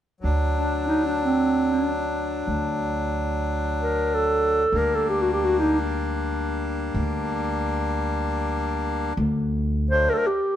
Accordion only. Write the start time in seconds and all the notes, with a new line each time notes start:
0.21 F#3 D4
4.71 G3 A#3 D4
9.90 F#3 A3 D4